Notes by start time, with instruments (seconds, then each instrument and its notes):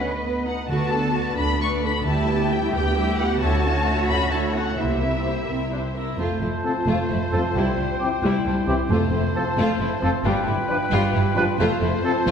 Already playing: double bass section D2, cello section B4, violin section B4 D#5
0.23 viola section B3
0.45 viola section D#4, violin section F#5
0.68 double bass section D2, timpani D3, viola section A3 F#4, cello section F#4, violin section B4 D5 A5
0.92 viola section B3 D4, cello section A4, violin section A4 B4
1.14 viola section A3 F#4, cello section F#4, violin section B4 D5
1.37 double bass section D2, viola section B3 D4, cello section D4, violin section A4 B4 B5
1.60 viola section A3 F#4, violin section B4 D5 C#6
1.83 viola section B3 D4, violin section A4 B4 B5
2.05 double bass section D2, timpani D3, viola section G3 E4, cello section E4, violin section G4 E5 A5
2.29 viola section B3 G4, violin section B4 G5
2.50 viola section G3 E4, violin section G4 E5 G5
2.73 double bass section D2, viola section B3 G4, cello section G4, violin section B4 G5
2.96 viola section G3 E4, violin section G4 E5
3.19 viola section B3 G4, violin section B4 F#5 G5
3.41 double bass section D2, viola section E4, cello section F#4, violin section C#5 E5 A5
3.45 viola section A3
3.65 viola section C#4, violin section A4 C#5
3.87 viola section A3 E4, violin section C#5 E5
4.09 double bass section D2, viola section C#4, violin section A4 C#5 B5
4.31 viola section A3 E4, violin section C#5 E5 A5
4.55 viola section C#4, violin section A4 C#5 F#5
4.77 double bass section C2, viola section A#3 G4, cello section E4, violin section C5 E5
5.01 viola section C4 E4, violin section A#4 E5
5.26 viola section A#3 G4, violin section C5
5.48 double bass section C2, viola section C4, violin section A#4 E5
5.72 viola section D4, violin section C5
5.94 viola section E4, violin section A#4 E5
6.16 double bass section F1, cello section F2, viola section A3, clarinet F4, violin section F4 C5, oboe C5, flute A5
6.40 double bass section F1, cello section F2, viola section A3, violin section E4
6.64 french horn section F3 C4, trumpet A4
6.86 double bass section F1, cello section F2, viola section A3, violin section F4
7.09 double bass section F1, cello section F2, viola section A3, violin section E4
7.31 double bass section F1, cello section F2, french horn section F3 C4, viola section A3, violin section F4, trumpet A4
7.54 double bass section C2, cello section C2, viola section G3, violin section E4, flute G5
7.77 double bass section C2, cello section C2, viola section G3, violin section D4
8.00 french horn section E3 C4, trumpet G4
8.22 double bass section C2, cello section C2, viola section G3, clarinet E4, violin section E4
8.45 double bass section C2, cello section C2, viola section G3, violin section D4
8.67 double bass section C2, cello section C2, french horn section E3 C4, viola section G3, violin section E4, trumpet G4
8.89 double bass section F1, cello section F2, timpani F2, viola section A3, clarinet F4, violin section F4 C5, oboe C5, flute A5
9.12 double bass section F1, cello section F2, viola section A3, violin section E4
9.35 french horn section F3 C4, trumpet A4
9.57 double bass section F1, cello section F2, viola section A3, violin section F4
9.80 double bass section F1, cello section F2, viola section A3, violin section E4
10.01 double bass section F1, cello section F2, french horn section F3 C4, viola section A3, violin section F4, trumpet A4
10.24 double bass section G1, cello section G2, viola section G3, violin section F4 B4, oboe B4, flute G5
10.46 double bass section G1, cello section G2, viola section G3, violin section E4
10.68 french horn section F3 D4, trumpet B4
10.91 double bass section G1, cello section G2, viola section G3, violin section F4
11.14 double bass section G1, cello section G2, viola section G3, violin section E4
11.35 double bass section G1, cello section G2, french horn section F3 D4, viola section G3, violin section F4, trumpet B4
11.59 double bass section F1, cello section F2, viola section A3, violin section F4 C5, clarinet F4, oboe C5, flute A5
11.81 double bass section F1, cello section F2, viola section A3, violin section E4
12.03 french horn section F3 C4, trumpet A4
12.26 double bass section F1, cello section F2, viola section A3, violin section F4